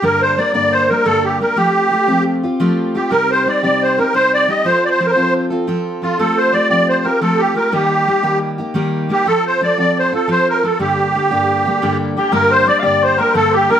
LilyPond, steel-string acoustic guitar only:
\new Staff \with { instrumentName = "Steel-string acoustic guitar" } { \time 9/8 \key g \minor \tempo 4. = 117 <g, d g bes d' bes'>4 <g bes d' bes'>8 <g, d g bes d' bes'>4 <g bes d' bes'>8 <g, d g bes d' bes'>4 <g bes d' bes'>8 | <f a c' f' g'>4 <a c' f' g'>8 <f a c' f' g'>4 <c' f' g'>8 <f a c' f' g'>4 <a c' f' g'>8 | <c g c' ees' g'>4 <g c' ees' g'>8 <c g c' ees' g'>4 <c' ees' g'>8 <c g c' ees' g'>4 <g c' ees' g'>8 | <f c' f' a'>4 <f c' f' a'>8 <f c' f' a'>4 <c' f' a'>8 <f c' f' a'>4 <f c' f' a'>8 |
<f a c' f' g'>4 <a c' f' g'>8 <f a c' f' g'>4 <c' f' g'>8 <f a c' f' g'>4 <a c' f' g'>8 | <ees g bes ees' g'>4 <g bes ees' g'>8 <ees g bes ees' g'>4 <bes ees' g'>8 <ees g bes ees' g'>4 <g bes ees' g'>8 | <f c' f' a'>4 <f c' f' a'>8 <f c' f' a'>4 <c' f' a'>8 <f c' f' a'>4 <f c' f' a'>8 | <g, d g bes d' g'>4 <g bes d' g'>8 <g, d g bes d' g'>4 <g bes d' g'>8 <g, d g bes d' g'>4 <g bes d' g'>8 |
<g, d g bes d' g'>4 <g bes d' g'>8 <g, d g bes d' g'>4 <g bes d' g'>8 <g, d g bes d' g'>4 <g bes d' g'>8 | }